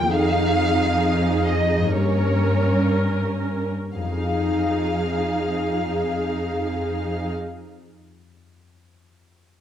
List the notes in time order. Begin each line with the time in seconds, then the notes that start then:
Already playing: D#2 F2 F4 A#4 G5
0.00 F3 D#4
0.08 G#4
0.13 F2 D#4 G#4 F5
1.47 D#5
1.78 G2
1.82 A#3
1.87 C#4
1.91 G4 C#5
1.96 G2 C#4 A#4
3.95 F2 D#4 G#4 F5
4.03 F3
4.10 C4
4.17 D#4
4.24 G#4
4.31 D#5